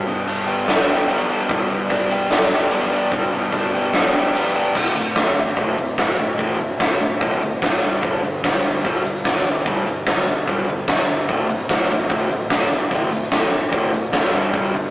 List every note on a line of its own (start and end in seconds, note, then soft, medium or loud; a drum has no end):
0.00 1.48 G2 medium
0.06 0.65 G1 medium
0.06 0.67 B3 medium
0.06 closed hi-hat medium
0.27 0.86 D4 medium
0.27 closed hi-hat medium
0.46 1.08 B3 medium
0.46 1.07 G4 medium
0.46 closed hi-hat medium
0.67 0.88 G2 medium
0.67 1.71 B3 medium
0.67 1.29 D4 medium
0.67 snare loud
0.67 closed hi-hat medium
0.87 1.28 D4 medium
0.87 2.51 G4 medium
0.87 closed hi-hat medium
1.08 2.09 B3 medium
1.08 2.11 G4 medium
1.08 closed hi-hat medium
1.28 1.91 D4 medium
1.28 closed hi-hat medium
1.49 1.68 G1 medium
1.49 2.51 G2 medium
1.49 kick loud
1.49 closed hi-hat medium
1.70 2.29 B3 medium
1.70 closed hi-hat medium
1.90 2.52 D4 medium
1.90 kick medium
1.90 closed hi-hat medium
2.10 2.71 B3 medium
2.10 2.70 G4 medium
2.10 closed hi-hat medium
2.30 2.68 G2 medium
2.30 3.33 B3 medium
2.30 2.91 D4 medium
2.30 snare loud
2.30 closed hi-hat medium
2.51 2.92 D4 medium
2.51 3.54 G4 medium
2.51 closed hi-hat medium
2.71 3.35 G2 medium
2.71 3.71 B3 medium
2.71 3.73 G4 medium
2.71 closed hi-hat medium
2.91 3.54 D4 medium
2.91 closed hi-hat medium
3.12 4.15 G2 medium
3.12 kick medium
3.12 closed hi-hat medium
3.32 3.90 G1 medium
3.32 3.93 B3 medium
3.32 closed hi-hat medium
3.52 4.14 D4 medium
3.52 kick medium
3.52 closed hi-hat medium
3.73 4.34 B3 medium
3.73 4.34 G4 medium
3.73 closed hi-hat medium
3.93 4.13 G2 medium
3.93 4.76 B3 medium
3.93 4.54 D4 medium
3.93 snare loud
3.93 closed hi-hat medium
4.14 4.54 D4 medium
4.14 4.76 G4 medium
4.14 closed hi-hat medium
4.35 4.53 E1 medium
4.35 4.76 B3 medium
4.35 4.76 G4 medium
4.35 closed hi-hat medium
4.55 4.74 D1 medium
4.55 4.76 D4 medium
4.55 closed hi-hat medium
4.75 4.85 D1 medium
4.75 4.95 D2 medium
4.75 4.95 A2 medium
4.75 4.96 D3 medium
4.75 kick medium
4.75 crash loud
4.95 5.24 D2 medium
4.95 5.15 D2 medium
4.95 5.15 A2 medium
4.95 closed hi-hat medium
5.16 5.35 D2 medium
5.16 5.35 A2 medium
5.16 kick loud
5.16 snare loud
5.16 closed hi-hat medium
5.27 5.36 D2 medium
5.37 5.56 A1 medium
5.37 5.56 D2 medium
5.37 5.56 A2 medium
5.37 closed hi-hat medium
5.57 5.76 F#1 medium
5.57 5.77 D2 loud
5.57 5.77 A2 loud
5.57 5.77 D3 loud
5.57 kick loud
5.57 closed hi-hat medium
5.78 6.35 D1 medium
5.78 5.97 D2 medium
5.78 5.97 A2 medium
5.78 closed hi-hat medium
5.98 6.17 D2 medium
5.98 6.17 A2 medium
5.98 kick loud
5.98 snare loud
5.98 closed hi-hat medium
6.19 6.37 D2 medium
6.19 6.37 A2 medium
6.19 closed hi-hat medium
6.38 6.58 A1 medium
6.38 6.57 D2 medium
6.38 6.58 A2 medium
6.38 6.59 D3 medium
6.38 kick medium
6.38 closed hi-hat medium
6.58 6.78 D2 medium
6.58 6.78 A2 medium
6.58 closed hi-hat medium
6.79 6.98 D2 medium
6.79 6.98 A2 medium
6.79 kick loud
6.79 snare loud
6.79 closed hi-hat medium
6.90 7.00 A1 medium
7.00 7.10 D1 medium
7.00 7.19 D2 medium
7.00 7.19 A2 medium
7.00 closed hi-hat medium
7.20 7.78 C2 medium
7.20 7.39 D2 loud
7.20 7.40 A2 loud
7.20 7.40 D3 medium
7.20 kick loud
7.20 closed hi-hat medium
7.41 7.59 D2 medium
7.41 7.60 A2 medium
7.41 closed hi-hat medium
7.62 7.80 D2 medium
7.62 7.80 A2 medium
7.62 kick loud
7.62 snare loud
7.62 closed hi-hat medium
7.82 8.19 G1 loud
7.82 8.01 G2 medium
7.82 8.02 D3 loud
7.82 8.02 G3 loud
7.82 closed hi-hat medium
8.02 8.22 G2 medium
8.02 8.22 D3 loud
8.02 8.23 G3 medium
8.02 kick loud
8.02 closed hi-hat medium
8.22 8.50 G2 medium
8.22 8.41 G2 medium
8.22 8.42 D3 medium
8.22 closed hi-hat medium
8.43 8.62 G2 medium
8.43 8.62 D3 medium
8.43 kick loud
8.43 snare loud
8.43 closed hi-hat medium
8.53 8.62 G2 medium
8.62 8.81 D2 medium
8.62 8.82 G2 medium
8.62 8.83 D3 medium
8.62 closed hi-hat medium
8.84 9.03 B1 loud
8.84 9.03 G2 medium
8.84 9.04 D3 loud
8.84 9.04 G3 loud
8.84 kick loud
8.84 closed hi-hat medium
9.04 9.62 G1 medium
9.04 9.23 G2 medium
9.04 9.23 D3 medium
9.04 closed hi-hat medium
9.24 9.43 G2 medium
9.24 9.43 D3 medium
9.24 kick loud
9.24 snare loud
9.24 closed hi-hat medium
9.45 9.64 G2 medium
9.45 9.64 D3 medium
9.45 closed hi-hat medium
9.65 9.84 D2 medium
9.65 9.85 G2 medium
9.65 9.85 D3 medium
9.65 9.85 G3 medium
9.65 kick loud
9.65 closed hi-hat medium
9.86 10.05 G2 medium
9.86 10.05 D3 medium
9.86 closed hi-hat medium
10.07 10.25 G2 medium
10.07 10.25 D3 medium
10.07 kick loud
10.07 snare loud
10.07 closed hi-hat medium
10.17 10.26 D2 medium
10.27 10.36 G1 medium
10.27 10.46 G2 medium
10.27 10.46 D3 medium
10.27 closed hi-hat medium
10.47 11.25 E1 medium
10.47 10.67 G2 medium
10.47 10.67 D3 loud
10.47 10.67 G3 loud
10.47 kick loud
10.47 closed hi-hat medium
10.68 10.86 G2 medium
10.68 10.86 D3 medium
10.68 closed hi-hat medium
10.88 11.07 G2 medium
10.88 11.07 D3 medium
10.88 kick loud
10.88 snare loud
10.88 closed hi-hat medium
11.08 11.27 G2 medium
11.08 11.27 D3 medium
11.08 closed hi-hat medium
11.28 11.38 D1 medium
11.28 11.48 D2 medium
11.28 11.48 A2 medium
11.28 11.48 D3 medium
11.28 kick loud
11.28 closed hi-hat medium
11.49 11.76 D2 loud
11.49 11.67 D2 medium
11.49 11.67 A2 medium
11.49 closed hi-hat medium
11.69 11.87 D2 medium
11.69 11.87 A2 medium
11.69 kick loud
11.69 snare loud
11.69 closed hi-hat medium
11.80 11.89 D2 medium
11.88 12.08 A1 medium
11.88 12.07 D2 medium
11.88 12.07 A2 medium
11.88 closed hi-hat medium
12.09 12.29 F#1 loud
12.09 12.28 D2 loud
12.09 12.28 A2 loud
12.09 12.29 D3 loud
12.09 kick loud
12.09 closed hi-hat medium
12.29 12.88 D1 medium
12.29 12.48 D2 medium
12.29 12.48 A2 medium
12.29 closed hi-hat medium
12.50 12.69 D2 medium
12.50 12.69 A2 medium
12.50 kick loud
12.50 snare loud
12.50 closed hi-hat medium
12.71 12.90 D2 medium
12.71 12.90 A2 medium
12.71 closed hi-hat medium
12.91 13.10 A1 medium
12.91 13.10 D2 medium
12.91 13.10 A2 loud
12.91 13.11 D3 medium
12.91 kick medium
12.91 closed hi-hat medium
13.12 13.30 D2 medium
13.12 13.30 A2 medium
13.12 closed hi-hat medium
13.32 13.50 D2 medium
13.32 13.50 A2 medium
13.32 kick loud
13.32 snare loud
13.32 closed hi-hat medium
13.42 13.51 A1 medium
13.51 13.61 D1 loud
13.51 13.70 D2 medium
13.51 13.70 A2 medium
13.51 closed hi-hat medium
13.72 14.29 C2 medium
13.72 13.91 D2 medium
13.72 13.91 A2 loud
13.72 13.92 D3 loud
13.72 kick loud
13.72 closed hi-hat medium
13.93 14.11 D2 medium
13.93 14.11 A2 medium
13.93 closed hi-hat medium
14.13 14.31 D2 medium
14.13 14.32 A2 medium
14.13 kick loud
14.13 snare loud
14.13 closed hi-hat medium
14.32 14.69 G1 loud
14.32 14.53 G2 medium
14.32 14.53 D3 loud
14.32 14.53 G3 loud
14.32 closed hi-hat medium
14.54 14.73 G2 medium
14.54 14.73 D3 medium
14.54 14.73 G3 medium
14.54 kick loud
14.54 closed hi-hat medium
14.73 14.90 G2 loud
14.73 14.90 G2 medium
14.73 14.90 D3 medium
14.73 closed hi-hat medium